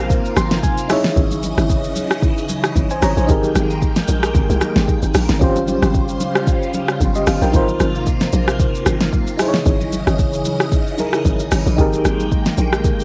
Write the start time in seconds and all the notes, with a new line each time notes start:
Already playing: A#1 C3 A#3 D#4 F4 A#4 C5
0.10 kick, low conga, shaker
0.25 shaker
0.37 G#1 C6, cross-stick, high conga, shaker
0.51 snare, shaker
0.63 G#5, kick, high conga, low conga, shaker
0.78 shaker
0.88 C#3 E3 D#4 E4 G#4 D#5 E5, cross-stick, open hi-hat, high conga, shaker
0.92 C#5
1.04 snare, shaker
1.16 G#1, kick, low conga, shaker
1.31 high conga, shaker
1.43 high conga, shaker
1.57 G#1, cross-stick, high conga, shaker
1.69 kick, shaker
1.84 shaker
1.96 high conga, shaker
2.11 cross-stick, shaker
2.22 kick, low conga, shaker
2.38 shaker
2.49 high conga, shaker
2.64 cross-stick, shaker
2.76 G#1, kick, high conga, low conga, shaker
2.90 C5 G#5, shaker
3.02 G#1 C#5 A#5, cross-stick, open hi-hat, high conga, shaker
3.17 A#1 C5 G#5, shaker
3.27 G#1 D#3 G#3 A#3 D#4 G4 G#4 G5, kick, low conga, shaker
3.31 A#4
3.43 high conga, shaker
3.55 G#1, cross-stick, high conga, shaker
3.70 high conga, shaker
3.82 kick, shaker
3.96 snare, shaker
4.08 A#1, high conga, shaker
4.23 cross-stick, shaker
4.35 G#1, kick, low conga, shaker
4.50 C2, shaker
4.61 cross-stick, high conga, shaker
4.76 G#1, snare, shaker
4.88 kick, high conga, low conga, shaker
5.02 G#1, shaker
5.14 A#1, cross-stick, open hi-hat, high conga, shaker
5.29 G#1, snare, shaker
5.39 G#1 C#3 G3 C#4 F4 G4 C5, kick, low conga, shaker
5.44 C5
5.56 high conga, shaker
5.68 high conga, shaker
5.82 G#1, cross-stick, high conga, shaker
5.94 kick, shaker
6.08 shaker
6.20 high conga, shaker
6.35 cross-stick, shaker
6.47 kick, low conga, shaker
6.63 shaker
6.74 high conga, shaker
6.88 cross-stick, shaker
7.00 G1, kick, high conga, low conga, shaker
7.15 G4 D#5, shaker
7.27 G1 F5, cross-stick, open hi-hat, high conga, shaker
7.42 A#1 A#4 G5, shaker
7.52 G#1 C3 A#3 D#4 F4 A#4, kick, low conga, shaker
7.56 C5
7.68 high conga, shaker
7.80 G#1, cross-stick, high conga, shaker
7.95 high conga, shaker
8.06 kick, shaker
8.21 snare, shaker
8.33 A#1, high conga, shaker
8.48 cross-stick, shaker
8.59 kick, low conga, shaker
8.75 shaker
8.86 G#1, cross-stick, high conga, shaker
9.01 snare, shaker
9.13 kick, high conga, low conga, shaker
9.27 shaker
9.38 C#3 E3 D#4 E4 G#4 D#5, cross-stick, open hi-hat, high conga, shaker
9.42 C5
9.48 C#5
9.54 snare, shaker
9.66 G#1, kick, low conga, shaker
9.80 high conga, shaker
9.92 high conga, shaker
10.07 G#1, cross-stick, high conga, shaker
10.19 kick, shaker
10.33 shaker
10.45 high conga, shaker
10.60 cross-stick, shaker
10.72 kick, low conga, shaker
10.87 shaker
10.98 D#4 E4 G#4 A#4, high conga, shaker
11.13 cross-stick, shaker
11.25 G#1, kick, high conga, low conga, shaker
11.40 shaker
11.52 G#1, cross-stick, open hi-hat, high conga, shaker
11.66 A#1, shaker
11.76 G#1 D#3 G#3 A#3 D#4 G4 G#4 G5, kick, low conga, shaker
11.81 A#4
11.93 high conga, shaker
12.05 G#1, cross-stick, high conga, shaker
12.20 high conga, shaker
12.31 kick, shaker
12.46 snare, shaker
12.57 A#1, high conga, shaker
12.73 cross-stick, shaker
12.84 kick, low conga, shaker
13.00 shaker